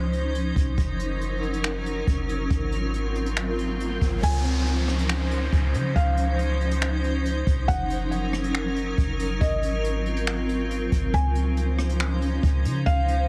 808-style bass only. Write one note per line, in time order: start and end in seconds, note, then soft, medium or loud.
0.00 0.52 C#2 loud
0.56 0.77 C2 loud
0.78 2.03 F#1 loud
2.07 2.49 F#1 loud
2.51 3.98 G#1 loud
4.01 4.22 G#1 loud
4.23 5.49 C#2 loud
5.53 5.76 C#2 loud
5.74 5.95 C#3 loud
5.96 7.43 C#2 loud
7.47 7.68 C2 loud
7.69 8.94 F#1 loud
8.98 9.39 F#1 loud
9.41 10.88 G#1 loud
10.92 11.13 G#1 loud
11.14 12.39 C#2 loud
12.43 12.66 C#2 loud
12.65 12.85 C#3 loud
12.87 13.28 C#2 loud